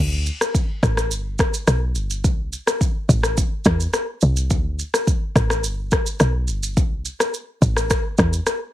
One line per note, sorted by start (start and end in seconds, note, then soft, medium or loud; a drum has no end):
0.00 0.30 D2 loud
0.26 shaker medium
0.41 cross-stick medium
0.41 shaker medium
0.55 kick medium
0.55 shaker medium
0.83 1.13 A1 medium
0.83 kick medium
0.83 cross-stick medium
0.83 shaker medium
0.97 cross-stick medium
0.97 shaker medium
1.11 1.43 G1 loud
1.11 shaker medium
1.39 kick medium
1.39 cross-stick medium
1.39 shaker soft
1.54 shaker medium
1.67 1.97 B1 medium
1.67 cross-stick medium
1.67 shaker medium
1.95 2.26 G1 loud
1.95 shaker soft
2.10 shaker medium
2.24 2.56 C2 loud
2.24 kick loud
2.24 shaker medium
2.53 shaker medium
2.67 cross-stick medium
2.67 shaker medium
2.81 kick medium
2.81 shaker medium
3.09 3.41 A1 medium
3.09 kick loud
3.09 shaker medium
3.23 cross-stick medium
3.23 shaker medium
3.37 kick medium
3.37 shaker medium
3.65 3.87 E2 loud
3.65 kick medium
3.65 cross-stick medium
3.65 shaker soft
3.80 shaker medium
3.94 cross-stick medium
3.94 shaker medium
4.21 4.52 C2 medium
4.21 shaker soft
4.37 shaker medium
4.50 4.82 D2 loud
4.50 kick loud
4.50 shaker medium
4.79 shaker medium
4.94 cross-stick medium
4.94 shaker medium
5.07 kick medium
5.07 shaker medium
5.36 5.66 A1 medium
5.36 kick medium
5.36 cross-stick medium
5.36 shaker medium
5.50 cross-stick medium
5.50 shaker medium
5.64 5.96 G1 loud
5.64 shaker medium
5.91 kick medium
5.91 cross-stick medium
5.91 shaker soft
6.07 shaker medium
6.20 6.50 B1 medium
6.20 cross-stick medium
6.20 shaker medium
6.48 6.78 G1 loud
6.48 shaker soft
6.63 shaker medium
6.77 7.09 C2 loud
6.77 kick loud
6.77 shaker medium
7.05 shaker medium
7.20 cross-stick medium
7.20 shaker medium
7.34 shaker medium
7.62 7.94 A1 medium
7.62 kick medium
7.62 shaker medium
7.77 cross-stick medium
7.77 shaker medium
7.90 kick medium
7.90 cross-stick loud
7.90 shaker medium
8.18 8.39 E2 medium
8.18 kick medium
8.18 cross-stick medium
8.18 shaker soft
8.33 shaker medium
8.47 cross-stick medium
8.47 shaker medium